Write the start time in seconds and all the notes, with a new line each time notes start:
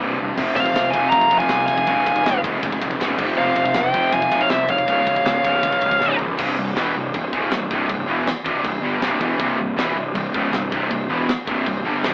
Already playing: C2 G2 C3
0.00 C1 C2 G2 C3
0.05 C2 G2
0.14 C2 G2
0.19 E1 C2 G2
0.29 C2 G2
0.36 F1 F2 C3 F3, kick, crash
0.44 F2 C3
0.52 F2 C3
0.56 F1 F2 C3 C5 F5, kick, ride
0.66 F2 C3, kick
0.73 F1 F2 C3, snare, ride
0.82 F2 C3
0.88 F2 C3 G#5
0.93 F1 C3 F3 F5, kick, ride
0.97 F2
1.04 F2 C3
1.10 F1 F2 C3 F5 A#5, kick, ride
1.16 F3
1.20 F2 C3, kick
1.27 F2 C3
1.31 F1 F2 F3, kick, ride
1.35 C3 F5 G#5
1.40 F2 C3, kick
1.49 C2 F2 C3, snare, ride
1.56 F2 C3
1.64 F2 C3 F5 G#5
1.68 F1 F2, kick, ride
1.73 C3
1.78 F2 C3, kick
1.87 F1 C#2 G#2 C#3, kick, ride
1.94 C#2 G#2
2.02 F1 C#2 G#2
2.06 C#2 G#2, kick, ride
2.16 C#2 G#2, kick
2.25 F1 C#2 G#2, snare, ride
2.33 C#2 G#2
2.40 F1 C#2 G#2, kick
2.44 C#2 C#3, ride
2.48 G#2
2.56 C#2 G#2
2.63 F1 C#2 G#2 C#3, kick, ride
2.72 C#2 G#2, kick
2.79 F1 C#2 G#2, kick, ride
2.87 C#2 G#2, kick
2.95 C#2 G#2
3.01 F1 C#2 G#2 C#3, snare, ride
3.10 C#2 G#2
3.18 F1 F2 C3 F3, kick, crash
3.25 F2 C3
3.33 F2 C3
3.37 F1 F2 F3 C5 F5
3.43 C3
3.48 F2 C3
3.55 F1 F2, kick, ride
3.59 C3
3.63 F2 C3, kick
3.71 F2 C3, snare, ride
3.76 F1 F2 C5 G5
3.82 F2 C3
3.90 F2 C3 F3, kick, ride
3.94 F1 C3 F3
4.01 F2
4.05 F2 C3
4.12 F1 F2 C3 F5 G#5, kick, ride
4.21 F2 C3, kick
4.28 F1 F2 C3, kick, ride
4.33 C3 F3
4.38 F2 C3 F5, kick
4.42 F2 C3 C#5
4.50 C2 C3 C5 E5, snare, ride
4.54 F2
4.61 F2 C3
4.68 F1 F2 C3 C#5 F5, kick, ride
4.78 kick
4.86 C#1 C#2 G#2 C#3, kick, ride
4.93 C#2 G#2
5.01 C#2 G#2
5.07 C#1 C#2 G#2, kick, ride
5.16 C#2 G#2, kick
5.24 C#1 C#2 G#2, snare, ride
5.32 C#2 G#2
5.40 C#2 G#2
5.44 C#1 C#2 G#2 C#3, kick, ride
5.55 C#2 G#2
5.61 C#1 C#2 G#2, kick, ride
5.66 C#2 G#2 C#3
5.72 kick
5.77 C#2 G#2
5.81 C#1 C#2, kick, ride
5.85 G#2
5.91 C#2 G#2, kick
6.00 C#1 C#2 G#2 C#3, snare
6.07 C#2 G#2
6.15 C#2 G#2
6.19 A#1 C#2 G#2, floor tom
6.24 C#2
6.29 C#2 G#2
6.38 C1 C2 G2 C3, kick, crash, china
6.57 C1 C2 G2
6.76 E1 E2 B2 E3, snare, china
6.96 C1 C2 G2
7.14 C1 C2 G2, kick, china
7.33 C#1 C#2 G#2 C#3, kick
7.51 C1 C2 G2, snare, china
7.71 C1 C2 G2 C3, kick
7.89 C1 C2 G2, kick, china
8.08 E1 E2 B2 E3
8.27 snare, china
8.45 C1 C2 G2 C3, kick
8.64 C1 C2 G2, kick, china
8.81 G1 G2 D3 G3
9.01 C1 C2 G2 C3, snare, china
9.20 E1 E2 B2 E3, kick
9.39 C1 C2 G2 C3, kick, china
9.58 C1 C2 G2
9.76 E1 E2 B2 E3, snare, china
9.95 C1 C2 G2
10.14 C1 C2 G2, kick, china
10.33 C#1 C#2 G#2 C#3, kick
10.51 C1 C2 G2, snare, china
10.71 C1 C2 G2 C3, kick
10.90 C1 C2 G2, kick, china
11.08 E1 E2 B2 E3
11.29 snare, china
11.47 C1 C2 G2 C3, kick
11.66 C1 C2 G2, kick, china
11.85 G1 G2 D3 G3
12.03 C1 C2 G2 C3, snare, china